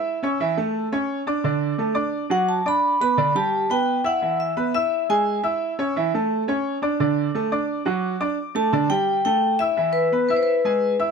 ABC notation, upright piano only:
X:1
M:4/4
L:1/8
Q:1/4=173
K:G
V:1 name="Upright piano"
[Eee'] [^C^c^c'] [E,Ee] [A,Aa]2 [Ccc']2 [Ddd'] | [D,Dd]2 [A,Aa] [Ddd']2 [F,Ff]2 [Ddd']- | [Ddd'] [B,Bb] [D,Dd] [G,Gg]2 [B,Bb]2 [Eee'] | [E,Ee]2 [B,Bb] [Eee']2 [^G,^G^g]2 [Eee']- |
[Eee'] [^C^c^c'] [E,Ee] [A,Aa]2 [Ccc']2 [Ddd'] | [D,Dd]2 [A,Aa] [Ddd']2 [F,Ff]2 [Ddd'] | z [A,Aa] [D,Dd] [G,Gg]2 [A,Aa]2 [Eee'] | [E,Ee]2 [B,Bb] [Eee']2 [^G,^G^g]2 [Eee'] |]